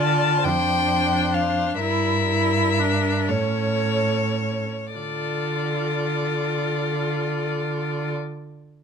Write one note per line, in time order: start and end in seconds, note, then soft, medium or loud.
0.00 0.46 D3 medium
0.00 0.47 F4 soft
0.00 0.44 D5 soft
0.00 0.46 A5 medium
0.44 1.80 F2 soft
0.44 1.80 D4 soft
0.44 1.78 C5 soft
0.44 1.36 G5 medium
1.35 1.79 F5 medium
1.80 3.30 G2 soft
1.80 2.28 E4 soft
1.80 3.30 A#4 soft
1.80 3.31 E5 medium
2.29 2.81 E4 soft
2.79 3.32 D4 soft
3.28 4.69 A2 soft
3.28 4.70 C#4 soft
3.28 4.69 A4 soft
3.28 4.95 C#5 medium
4.94 8.13 D3 soft
4.94 8.13 F4 soft
4.94 8.12 A4 soft
4.94 8.14 D5 soft